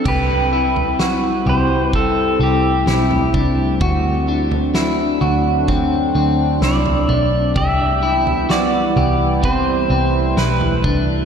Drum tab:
CC |x---------------|----------------|----------------|
SD |----o-------o---|----o-------o---|----o-------o---|
FT |o--o--o------oo-|o--o--o-o----oo-|o--o--o------oo-|
BD |o-------o-----o-|o-------o-------|o-------o-----o-|